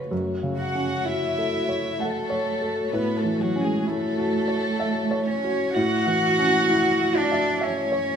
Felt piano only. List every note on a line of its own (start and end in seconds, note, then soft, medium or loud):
0.00 0.14 F4 soft
0.00 0.14 B4 soft
0.00 0.14 C#5 soft
0.00 0.14 F5 soft
0.11 2.89 F#2 soft
0.43 0.94 C#3 soft
0.75 1.25 C#4 soft
1.06 1.56 F#4 soft
1.38 1.88 A4 soft
1.69 2.18 C#5 soft
2.00 2.50 F#5 soft
2.30 2.80 C#5 soft
2.62 2.93 A4 soft
2.93 5.71 A2 soft
3.24 3.74 E3 soft
3.56 4.05 C#4 soft
3.87 4.36 E4 soft
4.18 4.67 F#4 soft
4.48 4.98 C#5 soft
4.80 5.30 E5 soft
5.11 5.63 C#5 soft
5.44 5.76 F#4 soft
5.76 8.16 A2 medium
6.07 6.57 E3 soft
6.39 6.88 C#4 soft
6.69 7.19 E4 soft
7.01 7.50 F#4 soft
7.32 7.60 E5 soft
7.61 8.11 E5 medium
7.92 8.16 C#5 medium